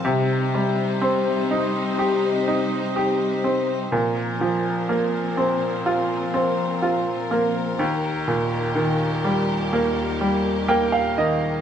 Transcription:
<<
  \new Staff \with { instrumentName = "Upright piano" } { \time 4/4 \key c \dorian \tempo 4 = 62 r1 | r1 | r2. g''16 f''16 ees''8 | }
  \new Staff \with { instrumentName = "Upright piano" } { \time 4/4 \key c \dorian c8 g8 c'8 ees'8 g'8 ees'8 g'8 c'8 | bes,8 f8 bes8 c'8 f'8 c'8 f'8 bes8 | ees,8 bes,8 ees8 g8 bes8 g8 bes8 ees8 | }
  \new Staff \with { instrumentName = "String section" } { \clef bass \time 4/4 \key c \dorian << { c''1 | bes'1~ | bes'1 | } \\ { <c g ees'>1 | <bes, f c'>1 | <ees, ees g'>1 | } >> }
>>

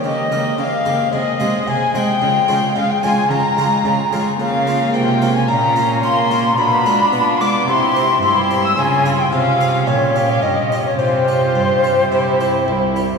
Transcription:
<<
  \new Staff \with { instrumentName = "Flute" } { \time 4/4 \key bes \dorian \tempo 4 = 109 ees''4 f''4 ees''4 aes''8 g''8~ | g''4 f''16 g''16 aes''8 bes''4. r8 | \key c \phrygian f''4 g''8. aes''16 bes''4 c'''4 | b''4. d'''8 c'''4 c'''8. e'''16 |
aes''8. g''16 f''4 des''8. f''16 ees''8. des''16 | c''2.~ c''8 r8 | }
  \new Staff \with { instrumentName = "Violin section" } { \time 4/4 \key bes \dorian ees''4 f''4 ees''4 aes''8 g''8~ | g''4 f''16 g''16 aes''8 bes''4. r8 | \key c \phrygian f''4 g''8. aes''16 bes''4 c'''4 | b''4. d'''8 c'''4 c'''8. e'''16 |
aes''8. g''16 f''4 des''8. f''16 ees''8. des''16 | c''2.~ c''8 r8 | }
  \new Staff \with { instrumentName = "Violin section" } { \time 4/4 \key bes \dorian g'8 g'8 g'8 g'8 aes'8 aes'8 aes'8 aes'8 | f'8 f'8 f'8 f'8 f'8 f'8 f'8 f'8 | \key c \phrygian f'2 f'2 | f'2 g'4 g'4 |
f'4 f'4 g'2 | g'2 g'4. r8 | }
  \new Staff \with { instrumentName = "Harpsichord" } { \time 4/4 \key bes \dorian r8 <ees' bes'>4 <ees' bes'>8 r8 <aes ees' aes'>4 <aes ees' aes'>8 | r8 <aes des' f'>4 <aes des' f'>8 r8 <aes des' f'>4 <aes des' f'>8 | \key c \phrygian r8 <bes des' f'>4 <bes des' f'>8 r8 <bes des' f'>4 <bes des' f'>8 | r8 <gis d' f'>4 <gis d' f'>8 r8 <c' e'>4 <c' e'>8 |
r8 <des' aes'>4 <des' aes'>8 r8 <des' g'>4 <des' g'>8 | r8 <f' g'>4 <f' g'>8 r8 <e' g'>4 <e' g'>8 | }
  \new Staff \with { instrumentName = "Harpsichord" } { \clef bass \time 4/4 \key bes \dorian des8 des8 des8 des8 c8 c8 c8 c8 | des8 des8 des8 des8 des8 des8 des8 des8 | \key c \phrygian des4 c4 bes,4 bes4 | b,4 b4 c4 g,4 |
des4 c4 bes,4 g,4 | c4 g,4 c4 c,4 | }
  \new Staff \with { instrumentName = "Viola section" } { \time 4/4 \key bes \dorian bes8 bes8 bes8 bes8 aes8 aes8 aes8 aes8 | aes8 aes8 aes8 aes8 aes8 aes8 aes8 aes8 | \key c \phrygian bes2 des'2 | d'2 e'4 e'4 |
des'4 des'4 des'2 | f'2 e'4. r8 | }
  \new Staff \with { instrumentName = "Cello section" } { \clef bass \time 4/4 \key bes \dorian des8 des8 des8 des8 c8 c8 c8 c8 | des8 des8 des8 des8 des8 des8 des8 des8 | \key c \phrygian des4 c4 bes,4 bes4 | b,4 b4 c4 g,4 |
des4 c4 bes,4 g,4 | c4 g,4 c4 c,4 | }
>>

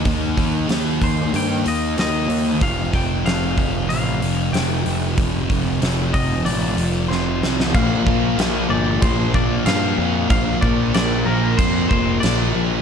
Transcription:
<<
  \new Staff \with { instrumentName = "Clean electric guitar" } { \time 4/4 \key bes \major \tempo 4 = 94 r4. c''8 g''8 ees''8 ees''4 | f''8 g''8 f''4 f''4 g''8. r16 | r4. ees''8 d''4 c''8. r16 | f''4. d''8 c''8 d''8 f''4 |
f''8 d''8 d''8 bes'8 c''8 c''8 d''8. r16 | }
  \new Staff \with { instrumentName = "Distorted electric guitar" } { \clef bass \time 4/4 \key bes \major <ees bes ees'>4 <ees bes ees'>4 <ees bes ees'>8 <bes ees'>8 <ees bes ees'>4 | <f, c f>4 <f, c f>4 <f, c f>8 <c f>8 <f, c f>4 | <f, c f>4 <f, c f>4 <f, c f>8 <c f>8 <f, c f>4 | <bes, f bes>8 <f bes>8 <bes, f bes>8 <f bes>4 <f bes>8 <bes, f bes>4 |
<bes, f bes>8 <f bes>8 <bes, f bes>8 <f bes>4 <f bes>8 <bes, f bes>4 | }
  \new Staff \with { instrumentName = "Picked electric bass" } { \clef bass \time 4/4 \key bes \major ees,8 ees,8 ees,8 ees,8 g,8 ees,8 ees,8 ees,8 | f,,8 f,,8 f,,8 f,,8 a,,8 f,,8 f,,8 f,,8 | f,,8 f,,8 f,,8 f,,8 a,,8 f,,8 f,,8 c,8 | bes,,4 bes,,8 g,,8 bes,,4 g,8 f,8 |
bes,,8 bes,,8 bes,,8 bes,,8 f,8 f,,8 bes,,8 bes,,8 | }
  \new DrumStaff \with { instrumentName = "Drums" } \drummode { \time 4/4 <hho bd>8 <hho bd>8 <hho sn>8 <hho bd>8 hho8 hho8 <hho sn>8 hho8 | <hho bd>8 <hho bd>8 <hho sn>8 <hho bd>8 hho8 hho8 <hho sn>8 hho8 | <hho bd>8 <hho bd>8 <hho sn>8 <hho bd>8 hho8 hho8 sn8 sn16 sn16 | <cymc bd>8 bd8 <cymc sn>4 <cymc bd>8 bd8 <cymc sn>4 |
<cymc bd>8 bd8 <cymc sn>4 <cymc bd>8 bd8 <cymc sn>4 | }
>>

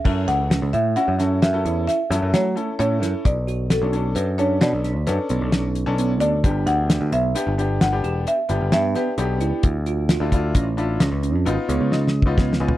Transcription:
<<
  \new Staff \with { instrumentName = "Marimba" } { \time 7/4 \key fis \phrygian \tempo 4 = 132 e''8 fis''4 e''8 fis''4 e''4 e''4 cis''4 cis''4 | d''4 a'4 b'8 cis''8 d''4 b'4 r4. d''8~ | d''8 fis''4 e''4. fis''4 e''4 e''8 b'4.~ | b'1. r4 | }
  \new Staff \with { instrumentName = "Grand piano" } { \time 7/4 \key fis \phrygian << { r1. r4 | r1. r4 | r1. r4 | r1 r8 cis''8 dis''4 eis''8 gis''8 | } \\ { <cis' e' a'>4. r8 <cis' e' fis'>16 r16 <cis' e' a'>8 r16 <cis' e' a'>4 r16 <cis' e' a'>8. r16 <cis' e' a'>16 r16 <cis' e' a'>4 | r4 r16 <cis' d' a'>16 <cis' d' a'>8. r16 <cis' d' a'>4 r8 <cis' d' a'>4~ <cis' d' a'>16 r8 <cis' d' a'>8 r16 <cis' d' a'>16 r16 | <b d' g'>4. r8 <b d' g'>16 r16 <b d' g'>8 r16 <b d' g'>4 r16 <b d' g'>8. r16 <b d' g'>16 r16 <b d' g'>4 | r4 r16 <d' e' f'>16 <d' e' f'>8. r16 <d' e' f'>8 r4 <b dis' eis'>4~ <b dis' eis'>16 r8 <b dis' eis'>8 r16 <b dis' eis'>16 r16 | } >> }
  \new Staff \with { instrumentName = "Tine electric piano" } { \time 7/4 \key fis \phrygian cis'4 cis'8 a8 cis'8 cis'4 e'4 r8 a4 cis'8 e'8~ | e'8 fis'8 fis'4 cis'8 d'8 d'8 d'4 b8 cis'4 b4 | d'4 d'8 b8 d'8 d'4 g'4 r8 b4 d'8 e'8~ | e'8 f'8 f'4 cis'8 d'8 cis'8 cis'4 b8 cis'4 b4 | }
  \new Staff \with { instrumentName = "Picked electric bass" } { \clef bass \time 7/4 \key fis \phrygian fis,8 cis,8. cis,16 a,8 r16 fis,8. fis,8 e,8 r8 fis,16 fis,16 fis8 r8 a,8 fis,16 r16 | b,,4~ b,,16 b,,8. fis,4 b,16 b,,8 d,16 fis,16 r16 b,,16 b,,4 b,,8. d,8 | g,,8 d,8. d,16 b,,8 r16 g,,8. g,,8 e,,8 r8 g,,16 g,,16 g,8 r8 b,,8 cis,16 r16 | d,4~ d,16 d,8. a,,4 cis,16 cis,8 eis,16 gis,,16 r16 cis,16 cis,4 cis,8. cis,16 r16 | }
  \new DrumStaff \with { instrumentName = "Drums" } \drummode { \time 7/4 <cymc bd>8 <hh sn>8 <hh sn>8 hh8 hh8 <hh sn>8 <hh sn>8 hh8 <hh sn>8 <hh sn>8 <hh sn>8 hh8 hh8 <hh sn>8 | <hh bd>8 hh8 <hh sn>8 hh8 hh8 hh8 <hh sn>8 <hh sn>8 <hh sn>8 hh8 <hh sn>8 hh8 hh8 hh8 | <hh bd>8 <hh sn>8 <hh sn>8 hh8 hh8 hh8 <hh sn>8 hh8 hh8 hh8 <hh sn>8 <hh sn>8 hh8 hh8 | <hh bd>8 hh8 <hh sn>8 <hh bd>8 <hh bd>8 hh8 <hh sn>8 hh8 hh8 hh8 \tuplet 3/2 { sn8 sn8 bd8 <bd sn>8 sn8 tomfh8 } | }
>>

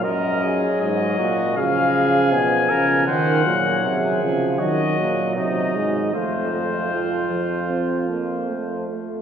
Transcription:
<<
  \new Staff \with { instrumentName = "Trumpet" } { \time 4/4 \key des \mixolydian \tempo 4 = 78 ees''4 ees''4 f''4 aes''4 | \key f \phrygian ges''4. r8 ees''4 ees''4 | c''2.~ c''8 r8 | }
  \new Staff \with { instrumentName = "Trumpet" } { \time 4/4 \key des \mixolydian bes'8 aes'4 ges'8 aes'4. bes'8 | \key f \phrygian c''8 r8 aes'4 ges'4 ees'4 | f'2.~ f'8 r8 | }
  \new Staff \with { instrumentName = "Trombone" } { \clef bass \time 4/4 \key des \mixolydian ges2 f2 | \key f \phrygian ees8 ges4 f8 ges4. aes8 | a8 a8 f8 f8 c'8 bes8 a8 a8 | }
  \new Staff \with { instrumentName = "Euphonium" } { \clef bass \time 4/4 \key des \mixolydian ges,4 aes,8 bes,8 des4 ces8 des8 | \key f \phrygian ees8 bes,8 c8 des8 ees8 bes,8 c8 aes,8 | f,2.~ f,8 r8 | }
>>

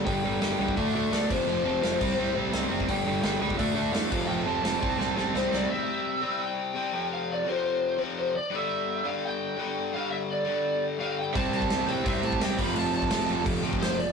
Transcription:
<<
  \new Staff \with { instrumentName = "Lead electric guitar" } { \time 4/4 \key c \major \tempo 4 = 170 g''4 g''4 e''4 d''8 c''8~ | c''2~ c''8 r4. | g''4 g''4 e''4 f''4 | g''8 a''2~ a''8 c''8 d''8 |
e''2 g''2 | f''8 d''8 c''4. r8 c''8 d''8 | e''4. f''8 g''2 | f''8 e''8 d''4. r8 f''8 g''8 |
a''8 a''4 g''8 e''8 a''8 g''8 b''8 | a''8 a''4. r4 c''8 d''8 | }
  \new Staff \with { instrumentName = "Overdriven electric guitar" } { \clef bass \time 4/4 \key c \major <g, d g>8 <g, d g>8 <g, d g>8 <g, d g>8 <d a d'>8 <d a d'>8 <d a d'>8 <f, c f>8 | <f, c f>8 <f, c f>8 <f, c f>8 <c g c'>8 <c g c'>8 <c g c'>8 <c g c'>8 <c g c'>8 | <g, d g>8 <g, d g>8 <g, d g>8 <g, d g>8 <d a d'>8 <d a d'>8 <d a d'>8 <f, c f>8 | <f, c f>8 <f, c f>8 <f, c f>8 <c g c'>8 <c g c'>8 <c g c'>8 <c g c'>8 <c g c'>8 |
r1 | r1 | r1 | r1 |
<c g c'>2 <c g c'>4. <f, c f>8~ | <f, c f>4. <f, c f>2 r8 | }
  \new Staff \with { instrumentName = "Overdriven electric guitar" } { \clef bass \time 4/4 \key c \major <g, d g>8 <g, d g>8 <g, d g>8 <g, d g>8 <d a d'>8 <d a d'>8 <d a d'>8 <f, c f>8 | <f, c f>8 <f, c f>8 <f, c f>8 <c g c'>8 <c g c'>8 <c g c'>8 <c g c'>8 <c g c'>8 | <g, d g>8 <g, d g>8 <g, d g>8 <g, d g>8 <d a d'>8 <d a d'>8 <d a d'>8 <f, c f>8 | <f, c f>8 <f, c f>8 <f, c f>8 <c g c'>8 <c g c'>8 <c g c'>8 <c g c'>8 <c g c'>8 |
<c g c'>4. <c g c'>4. <c g c'>8 <f, c f>8~ | <f, c f>4 <f, c f>4. <f, c f>4 r8 | <g, d g>4. <g, d g>4. <g, d g>4 | <g, d g>4. <g, d g>4. <g, d g>4 |
<c g c'>4. <c g c'>4. <c g c'>8 <f, c f>8~ | <f, c f>4 <f, c f>4. <f, c f>4 r8 | }
  \new Staff \with { instrumentName = "Picked electric bass" } { \clef bass \time 4/4 \key c \major g,,8 g,,8 g,,8 c,8 d,8 d,8 d,8 f,,8 | f,,8 f,,8 f,,8 c,8 c,8 a,,8 c,8 fis,,8 | g,,8 g,,8 g,,8 cis,8 d,8 d,8 e,8 f,,8 | f,,8 f,,8 f,,8 c,8 c,8 a,,8 c,8 c,8 |
r1 | r1 | r1 | r1 |
c,8 c,8 c,8 c,8 c,8 a,8 c,8 f,,8 | f,,8 f,,8 f,,8 f,,8 f,,8 d,8 f,,8 f,,8 | }
  \new DrumStaff \with { instrumentName = "Drums" } \drummode { \time 4/4 <hho bd>4 <hho sn>8. bd16 <hho bd>4 <hho sn>8 <cymc bd>8 | r4 <hho sn>8 <cymc bd>8 r4 <hho sn>8. bd16 | <hho bd>4 <hho sn>8. bd16 <hho bd>4 <hho sn>8 <cymc bd>8 | r4 <hho sn>8 bd8 sn8 sn8 sn8 sn8 |
r4 r4 r4 r4 | r4 r4 r4 r4 | r4 r4 r4 r4 | r4 r4 r4 r4 |
<cymc bd>8 cymc16 bd16 <cymc sn>8 cymc8 <cymc bd>8 cymc16 bd16 <cymc sn>8 <cymc bd>8 | cymc8 cymc16 bd16 <cymc sn>8 cymc8 <cymc bd>8 cymc16 bd16 <cymc sn>8 cymc8 | }
>>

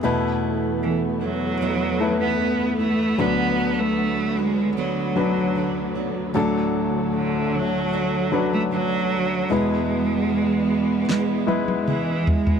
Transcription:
<<
  \new Staff \with { instrumentName = "Grand piano" } { \time 4/4 \key e \mixolydian \tempo 4 = 76 <a e' b'>2 r8 <a e' b'>4. | <fis d' b'>2 r8 <fis d' b'>4. | <fis d' a'>2 r8 <fis d' b'>4. | <gis e' b'>2 r8 <gis e' b'>4. | }
  \new Staff \with { instrumentName = "Grand piano" } { \clef bass \time 4/4 \key e \mixolydian <e, b,>1 | <d, d>1 | <d, a,>1 | <e, b,>1 | }
  \new Staff \with { instrumentName = "Steel-string acoustic guitar" } { \time 4/4 \key e \mixolydian <e, b, e a b e'>4. <e a b e'>8 <e, b, e a b e'>8 <e a b e'>8 <e a b e'>8 <e a b e'>8 | <d b d' fis'>4. <b d' fis'>8 <d b d' fis'>8 <b d' fis'>8 <d b d' fis'>8 <b d' fis'>8 | <d a d' fis'>2 <d a d' fis'>8 <a d' fis'>8 <d a d' fis'>8 <a d' fis'>8 | <e, b, e gis b e'>2 <e, b, e gis b e'>8 <e gis b e'>8 <e gis b e'>4 | }
  \new Staff \with { instrumentName = "Cello" } { \clef bass \time 4/4 \key e \mixolydian r4 e8 fis4~ fis16 b8. a8 | b8. a8. gis8 fis4. r8 | r4 d8 fis4~ fis16 a16 fis4 | gis2. e8 gis8 | }
  \new Staff \with { instrumentName = "String section" } { \clef bass \time 4/4 \key e \mixolydian << { b1~ | b1 | a1 | b1 | } \\ { <e, e a>1 | <d, d fis>1~ | <d, d fis>1 | <e, e gis>1 | } >> }
  \new DrumStaff \with { instrumentName = "Drums" } \drummode { \time 4/4 r4 r4 r4 r4 | r4 r4 r4 r4 | r4 r4 r4 r4 | r4 r4 sn8 tommh16 tommh16 toml8 tomfh16 tomfh16 | }
>>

